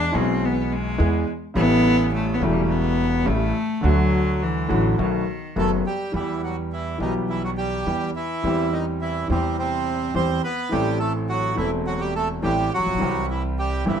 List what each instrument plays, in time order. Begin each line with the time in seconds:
Already playing: upright bass E2, grand piano E2 E3 G#3 B3 G#4, cello D4
0.12 grand piano B1 B2 E3 G#3 B3, upright bass B1
0.16 cello C4, grand piano G#4
0.45 cello B3
0.73 cello G#3
0.98 grand piano E2 E3 G#3 B3 G#4, upright bass E2
1.54 upright bass A1, grand piano A1 A2 C#3 G3 A3 E4, cello B3
2.13 cello A3
2.34 cello B3
2.39 grand piano E1 E2 C#3 G3 A3, upright bass E1, cello A3
2.44 grand piano E4
2.52 cello G3
2.61 cello A3
2.71 cello B3
3.25 grand piano A1 A2 C#3 G3 A3 E4, upright bass A1, cello A3
3.81 grand piano D2 D3 F#3 A3, upright bass D2, cello F#3
3.85 grand piano F#4
4.42 cello E3
4.68 grand piano A1 A2 D3 F#3 A3 F#4, upright bass A1
4.98 grand piano B1 B2 D#3 A3 B3 F#4, upright bass B1, cello D#3
5.56 grand piano F#1 F#2 D#3 A3 B3 F#4, upright bass F#1, bandoneon A3 A4
5.86 bandoneon G3 G4
6.12 grand piano E2 E3 G3 B3, upright bass E2, bandoneon E3 E4
6.16 grand piano G4
6.43 bandoneon F#3 F#4
6.73 bandoneon E3 E4
6.98 upright bass B1, grand piano B1 B2 E3 G3 B3 G4, bandoneon D#3 D#4
7.29 bandoneon E3 E4
7.44 bandoneon F#3 F#4
7.57 bandoneon G3 G4
7.86 upright bass E2, grand piano E2 E3 G3 B3 G4
8.16 bandoneon E3 E4
8.42 upright bass E2, grand piano E2 E3 G3 C4
8.47 grand piano G4
8.73 bandoneon D#3 D#4
9.01 bandoneon E3 E4
9.28 grand piano E2 E3 G3 C4, upright bass E2, bandoneon C3 C4
9.32 grand piano G4
9.59 bandoneon C3 C4
10.14 upright bass E2, grand piano E2 E3 G3 C4 G4, bandoneon C4 C5
10.44 bandoneon B3 B4
10.69 grand piano A1 A2 E3 A3 C4 A4, upright bass A1, bandoneon G3 G4
11.00 bandoneon A3 A4
11.29 bandoneon F#3 F#4
11.55 grand piano E1 E2 E3 A3 C4 A4, upright bass E1, bandoneon E3 E4
11.87 bandoneon F#3 F#4
12.01 bandoneon G3 G4
12.16 bandoneon A3 A4
12.43 grand piano A1 A2 E3 A3 C4 A4, upright bass A1, bandoneon G3 G4
12.74 bandoneon F#3 F#4
12.78 grand piano A1, upright bass A1
12.86 grand piano A#1, upright bass A#1
12.92 grand piano B1, upright bass B1
12.97 grand piano C2 C3 E3 G3 C4
13.02 upright bass C2, grand piano G4
13.30 bandoneon E3 E4
13.59 bandoneon G3 G4
13.85 grand piano G1 G2 E3 G3 C4 G4, upright bass G1, bandoneon E3 E4